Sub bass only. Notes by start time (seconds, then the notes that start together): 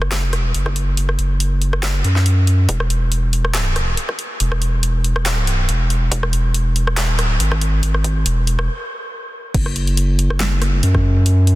Already playing: F#1
0.15 F1
0.41 E1
0.55 F#1
1.19 F#1
2.04 F#2
2.69 E1
4.40 E1
5.69 E1
6.12 E1
7.01 D#1
7.27 D1
7.40 G#1
8.26 E1
9.54 F#1
10.83 F#2